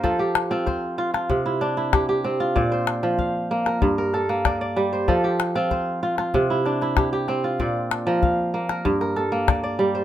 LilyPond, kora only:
<<
  \new Staff \with { instrumentName = "Kora" } { \time 4/4 \key f \major \tempo 4 = 95 <a' bes' c''>16 g'8 f'16 c''8. f'8 e'16 d'8 g'16 g'8 f'16 | d''16 c''8. f''8. bes'8 bes'16 a'8 d''16 d''8 c''16 | a'16 g'8 f'16 c''8. f'8 e'16 d'8 g'16 g'8 f'16 | d''8. bes'16 f''8. bes'8 bes'16 a'8 d''16 d''8 c''16 | }
  \new Staff \with { instrumentName = "Kora" } { \clef bass \time 4/4 \key f \major f8 r16 c'8 r16 f'8 c8 r16 e'8 r16 c'8 | bes,8 r16 f8 r16 bes8 g,8 r16 bes8 r16 g8 | f8 r16 c'8 r16 f'8 c8 r16 e'8 r16 c'8 | bes,8 r16 f8 r16 bes8 g,8 r16 bes8 r16 g8 | }
>>